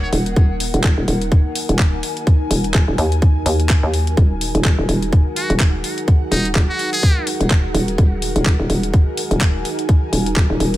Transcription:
Already playing: fm bass D#1, ambient pad D#4 A#4 F#5, analog synth pad D#4 F#4 A#4, downlifter
0.02 muted trumpet C#5
0.13 fm bass D#1, open hi-hat
0.26 closed hi-hat
0.36 fm bass D#1, kick, closed hi-hat
0.60 open hi-hat
0.74 fm bass D#1, closed hi-hat
0.84 fm bass D#1, kick, clap, closed hi-hat
0.98 fm bass D#1
1.08 fm bass D#1, ambient pad G#5, open hi-hat
1.22 closed hi-hat
1.32 kick, closed hi-hat
1.55 open hi-hat
1.69 fm bass D#1, closed hi-hat
1.79 kick, clap, closed hi-hat
2.03 open hi-hat
2.17 closed hi-hat
2.27 kick, closed hi-hat
2.51 fm bass D#1, open hi-hat
2.64 closed hi-hat
2.74 fm bass D#1, kick, clap, closed hi-hat
2.88 fm bass D#1
2.98 fm bass D#2, open hi-hat
3.12 closed hi-hat
3.22 kick, closed hi-hat
3.46 fm bass D#2, open hi-hat
3.60 closed hi-hat
3.69 kick, clap, closed hi-hat
3.83 fm bass D#2
3.94 open hi-hat
4.07 closed hi-hat
4.17 fm bass D#1, analog synth pad G#4, kick, closed hi-hat
4.41 open hi-hat
4.55 fm bass D#1, closed hi-hat
4.64 fm bass D#1, kick, clap, closed hi-hat
4.79 fm bass D#1
4.89 fm bass D#1, ambient pad F#5, open hi-hat
5.02 closed hi-hat
5.13 kick, closed hi-hat
5.36 muted trumpet F#4, open hi-hat
5.50 fm bass D#1, closed hi-hat
5.60 kick, clap, closed hi-hat
5.84 open hi-hat
5.98 closed hi-hat
6.08 kick, closed hi-hat
6.32 fm bass D#1, muted trumpet D#4, open hi-hat
6.45 closed hi-hat
6.55 fm bass D#1, kick, clap, closed hi-hat
6.69 muted trumpet F#4
6.79 open hi-hat
6.93 muted trumpet G#4, closed hi-hat
7.03 kick, closed hi-hat
7.27 open hi-hat
7.41 fm bass D#1, closed hi-hat
7.50 kick, clap, closed hi-hat
7.74 fm bass D#1, open hi-hat
7.88 closed hi-hat
7.98 fm bass D#1, kick, closed hi-hat
8.22 open hi-hat
8.36 fm bass D#1, closed hi-hat
8.46 fm bass D#1, kick, clap, closed hi-hat
8.60 fm bass D#1
8.70 fm bass D#1, ambient pad G#5, open hi-hat
8.83 closed hi-hat
8.94 kick, closed hi-hat
9.17 open hi-hat
9.31 fm bass D#1, closed hi-hat
9.41 kick, clap, closed hi-hat
9.65 open hi-hat
9.79 closed hi-hat
9.89 kick, closed hi-hat
10.13 fm bass D#1, open hi-hat
10.26 closed hi-hat
10.36 fm bass D#1, kick, clap, closed hi-hat
10.50 fm bass D#1
10.60 fm bass D#1, open hi-hat
10.74 closed hi-hat

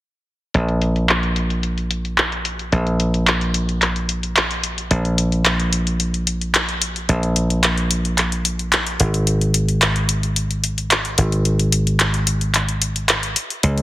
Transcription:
0.54 slap bass A#1, closed hi-hat
0.69 closed hi-hat
0.82 closed hi-hat
0.96 closed hi-hat
1.09 clap, closed hi-hat
1.23 closed hi-hat
1.36 closed hi-hat
1.50 closed hi-hat
1.63 closed hi-hat
1.78 closed hi-hat
1.91 closed hi-hat
2.05 closed hi-hat
2.18 clap, closed hi-hat
2.32 closed hi-hat
2.45 closed hi-hat
2.59 closed hi-hat
2.72 slap bass A#1, closed hi-hat
2.87 closed hi-hat
3.00 closed hi-hat
3.14 closed hi-hat
3.27 clap, closed hi-hat
3.41 closed hi-hat
3.54 closed hi-hat
3.69 closed hi-hat
3.82 clap, closed hi-hat
3.96 closed hi-hat
4.09 closed hi-hat
4.23 closed hi-hat
4.36 clap, closed hi-hat
4.51 closed hi-hat
4.63 closed hi-hat
4.78 closed hi-hat
4.91 slap bass A#1, closed hi-hat
5.05 closed hi-hat
5.18 closed hi-hat
5.32 closed hi-hat
5.45 clap, closed hi-hat
5.60 closed hi-hat
5.73 closed hi-hat
5.87 closed hi-hat
6.00 closed hi-hat
6.14 closed hi-hat
6.27 closed hi-hat
6.41 closed hi-hat
6.54 clap, closed hi-hat
6.69 closed hi-hat
6.82 closed hi-hat
6.96 closed hi-hat
7.09 slap bass A#1, closed hi-hat
7.23 closed hi-hat
7.36 closed hi-hat
7.50 closed hi-hat
7.63 clap, closed hi-hat
7.78 closed hi-hat
7.91 closed hi-hat
8.05 closed hi-hat
8.18 clap, closed hi-hat
8.32 closed hi-hat
8.45 closed hi-hat
8.59 closed hi-hat
8.72 clap, closed hi-hat
8.87 closed hi-hat
9.00 slap bass G#1, closed hi-hat
9.14 closed hi-hat
9.27 closed hi-hat
9.41 closed hi-hat
9.54 closed hi-hat
9.69 closed hi-hat
9.82 clap, closed hi-hat
9.96 closed hi-hat
10.09 closed hi-hat
10.23 closed hi-hat
10.36 closed hi-hat
10.51 closed hi-hat
10.64 closed hi-hat
10.78 closed hi-hat
10.91 clap, closed hi-hat
11.05 closed hi-hat
11.18 slap bass G#1, closed hi-hat
11.32 closed hi-hat
11.45 closed hi-hat
11.59 closed hi-hat
11.72 closed hi-hat
11.87 closed hi-hat
12.00 clap, closed hi-hat
12.14 closed hi-hat
12.27 closed hi-hat
12.41 closed hi-hat
12.54 clap, closed hi-hat
12.69 closed hi-hat
12.82 closed hi-hat
12.96 closed hi-hat
13.09 clap, closed hi-hat
13.23 closed hi-hat
13.36 closed hi-hat
13.50 closed hi-hat
13.63 slap bass C#2, closed hi-hat
13.78 closed hi-hat

